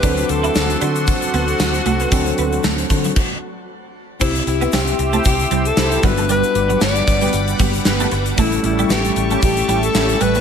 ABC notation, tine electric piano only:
X:1
M:4/4
L:1/8
Q:"Swing 16ths" 1/4=115
K:Dmix
V:1 name="Tine electric piano"
[F,CDA]8 | [F,CDA]4 z4 | [CEG]6- [CEG] [G,B,DFB]- | [G,B,DFB]6- [G,B,DFB] z |
[G,A,^CEA]8 |]